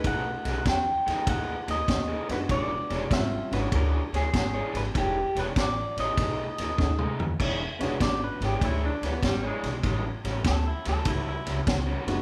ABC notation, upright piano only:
X:1
M:4/4
L:1/8
Q:"Swing" 1/4=98
K:Emix
V:1 name="Upright piano"
[A,C^DG]2 z4 z [G,B,=DF]- | [G,B,DF]2 [=G,=C^C=F] [^G,CD^F]2 z3 | z6 [A,C^DG]2 | z [G,B,CDF]3 z4 |
z6 z [G,B,CDF] |]